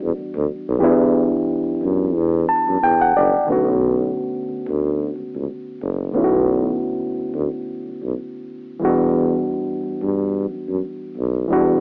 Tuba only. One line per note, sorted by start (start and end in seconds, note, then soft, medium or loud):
0.02 0.14 E2 loud
0.16 0.23 D2 soft
0.35 0.47 D2 loud
0.68 0.80 B1 loud
0.82 1.30 E2 loud
1.68 1.74 F#2 medium
1.82 2.17 F#2 medium
2.15 2.45 E2 loud
2.68 2.80 F#2 medium
2.82 3.12 E2 medium
3.16 3.32 F#1 medium
3.50 4.11 B1 medium
4.49 4.56 D2 soft
4.68 5.11 D2 medium
5.16 5.23 C#2 soft
5.34 5.47 C#2 medium
5.82 6.11 F#1 medium
6.15 6.77 B1 loud
7.16 7.23 D2 soft
7.34 7.47 D2 medium
7.83 7.90 B1 soft
8.02 8.14 B1 medium
8.82 9.44 E2 loud
9.83 9.90 G2 soft
10.02 10.44 G2 medium
10.49 10.56 F#2 soft
10.68 10.80 F#2 medium
11.17 11.46 B1 medium
11.50 11.80 E2 medium